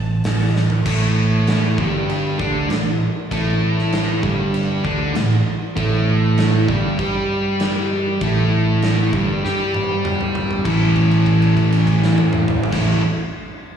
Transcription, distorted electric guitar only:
0.86 1.77 A2 medium
0.86 1.77 A3 loud
1.78 2.38 G2 medium
1.78 2.39 G3 medium
2.38 2.69 D3 medium
2.38 2.69 D4 loud
2.69 2.94 A2 medium
3.31 4.22 A2 medium
3.31 4.23 A3 medium
4.22 4.83 G2 medium
4.22 4.83 G3 medium
4.83 5.14 D3 medium
4.83 5.14 D4 loud
5.15 5.40 A2 medium
5.75 6.67 A2 medium
5.75 6.67 A3 loud
6.69 6.98 G2 medium
6.69 6.98 G3 medium
6.99 8.20 G3 medium
6.99 8.21 G4 loud
8.22 9.12 A2 loud
8.22 9.13 A3 medium
9.14 9.43 G2 medium
9.14 9.43 G3 loud
9.44 10.65 G3 medium
9.44 10.65 G4 loud
10.64 12.71 A2 medium
10.64 12.72 E3 medium
10.64 12.73 A3 loud
10.64 12.73 C#4 medium
10.64 12.74 E4 medium
10.64 12.75 A4 loud
12.71 12.99 A2 medium
12.71 13.00 E3 medium
12.71 13.01 A3 loud
12.71 13.01 C#4 medium
12.71 13.01 E4 medium
12.75 13.02 A4 medium

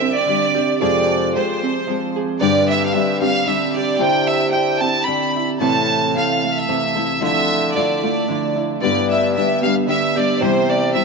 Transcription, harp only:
0.00 0.24 D3 medium
0.00 1.16 A3 medium
0.00 1.62 C4 medium
0.25 0.85 D3 medium
0.55 2.22 G4 medium
0.81 1.86 F3 medium
1.63 3.21 C4 medium
1.87 2.46 F3 medium
2.16 3.82 G#4 medium
2.41 3.47 D3 medium
3.22 4.80 C4 medium
3.48 3.98 D3 medium
3.76 6.11 G4 medium
4.00 5.06 D3 medium
4.80 7.80 C4 medium
5.07 5.66 D3 medium
5.36 6.96 E4 medium
5.61 6.68 C3 medium
6.43 8.03 A3 medium
6.69 7.27 C3 medium
6.97 8.56 E4 medium
7.23 8.27 D3 medium
8.03 11.05 A3 medium
8.28 8.80 D3 medium
8.56 11.05 E4 medium
8.81 9.85 D3 medium
9.61 11.05 B3 medium
9.86 10.45 D3 medium
10.15 11.05 G4 medium
10.40 11.05 E3 medium

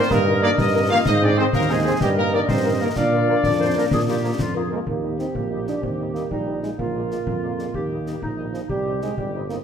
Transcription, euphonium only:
0.10 0.24 A#3 medium
0.42 0.59 D4 medium
0.58 0.89 D#4 medium
0.90 1.04 F4 medium
1.07 1.13 D#4 medium
1.22 1.29 D4 medium
1.39 1.46 C4 medium
1.54 1.68 A#3 medium
1.71 1.85 G#3 medium
2.02 2.16 G3 medium
2.18 2.36 A#3 medium
2.34 2.49 D4 medium
2.50 2.79 C4 medium
2.81 2.88 A#3 medium
2.97 4.68 D4 medium
4.72 4.79 G#3 medium
4.89 5.18 A#3 medium
5.19 5.37 C4 medium
5.35 5.67 A#3 medium
5.68 5.84 D4 medium
5.82 6.13 C4 medium
6.14 6.29 A#3 medium
6.31 6.60 G3 medium
6.63 6.70 G#3 medium
6.78 8.34 A#3 medium
8.52 8.60 F3 medium
8.70 9.00 G3 medium
9.02 9.17 G#3 medium
9.18 9.32 G3 medium
9.49 9.56 A#3 medium

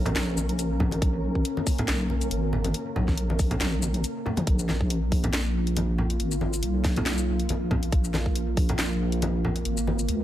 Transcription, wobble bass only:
0.00 0.14 A#1 loud
0.16 1.01 A#1 loud
1.02 1.44 A#1 medium
1.88 2.30 B1 loud
2.31 2.73 G#1 loud
2.96 3.59 A#1 medium
3.61 4.04 A#1 loud
4.47 5.32 A#1 medium
5.33 6.18 A#1 loud
6.20 6.62 G#1 loud
6.63 7.48 B1 loud
7.50 7.91 A#1 loud
7.92 8.77 A#1 loud
8.79 9.64 A#1 medium
9.65 10.07 G#1 loud
10.09 10.24 C#2 loud

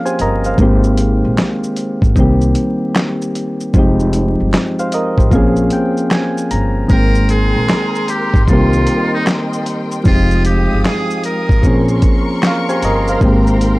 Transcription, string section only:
6.89 10.02 A#4 medium
6.89 11.59 G5 medium
6.89 8.46 A#5 medium
6.89 10.02 C6 medium
8.48 10.04 D#5 medium
10.05 11.62 G#3 medium
10.05 11.62 F5 medium
10.05 11.62 D#6 medium
11.64 13.79 A#4 medium
11.64 13.79 A#5 medium
11.64 13.79 C6 medium
11.64 13.20 C#6 medium
13.22 13.79 G5 medium

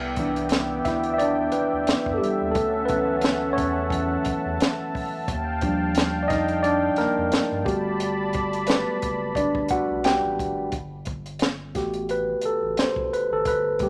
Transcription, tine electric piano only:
0.19 1.16 E3 medium
0.19 1.16 B3 soft
0.19 1.16 D4 medium
0.85 1.12 E4 medium
0.85 1.10 E5 medium
1.14 1.19 E5 medium
1.18 1.52 D4 medium
1.18 1.54 D5 loud
1.52 2.12 B3 medium
1.52 2.10 B4 medium
2.13 2.20 A4 medium
2.18 2.37 G3 medium
2.18 2.34 G4 medium
2.51 2.85 A4 medium
2.56 2.87 A3 medium
2.85 3.89 E3 medium
2.85 3.89 F#3 soft
2.85 3.57 B4 medium
2.90 3.53 B3 medium
2.90 3.57 C#4 medium
3.53 4.87 C#5 medium
3.58 3.89 C#4 medium
3.90 4.21 E3 medium
3.90 4.21 F#3 soft
3.90 4.22 C#4 medium
5.62 6.08 F3 medium
5.62 6.09 G3 medium
5.62 6.09 D4 medium
6.23 6.29 D5 medium
6.28 6.45 D#4 medium
6.28 6.44 D#5 loud
6.63 6.80 D4 medium
6.63 6.78 D5 loud
6.98 7.63 A#3 medium
6.98 7.68 A#4 medium
7.65 8.31 G3 medium
7.65 8.65 A3 soft
7.65 8.65 B3 medium
7.65 8.64 F#4 medium
7.65 8.30 G4 medium
8.68 8.99 F#3 medium
8.68 8.99 A3 soft
8.68 9.33 B3 medium
8.68 9.38 B4 medium
9.36 9.69 D4 medium
9.36 9.68 D5 loud
9.71 10.03 F#4 medium
9.71 10.06 F#5 medium
10.05 10.55 G4 medium
10.05 10.54 G5 loud
11.75 12.22 A3 soft
11.75 12.23 B3 medium
11.75 12.22 F#4 soft
11.75 12.11 G4 medium
12.11 12.45 B4 medium
12.46 12.80 A4 medium
12.79 13.14 C5 loud
13.13 13.32 B4 medium
13.33 13.46 A4 medium
13.48 13.78 B4 medium
13.81 13.89 G3 medium
13.81 13.89 A3 soft
13.81 13.89 B3 medium
13.81 13.89 G4 medium

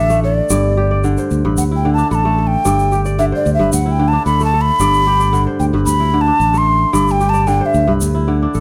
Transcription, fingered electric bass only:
0.00 0.40 A1 loud
0.50 1.16 G1 medium
1.31 1.42 D2 medium
1.45 1.55 A1 medium
1.58 2.02 D2 loud
2.11 2.55 A1 medium
2.66 3.31 G1 medium
3.46 3.57 D2 medium
3.59 3.70 G1 medium
3.73 4.17 D2 loud
4.26 4.70 D2 loud
4.79 5.46 G1 medium
5.60 5.71 D2 medium
5.73 5.84 G1 medium
5.86 6.30 D2 loud
6.40 6.84 A1 medium
6.93 7.60 G1 loud
7.74 7.85 D2 medium
7.88 7.99 C2 medium
8.02 8.46 D2 loud
8.55 8.60 A1 loud

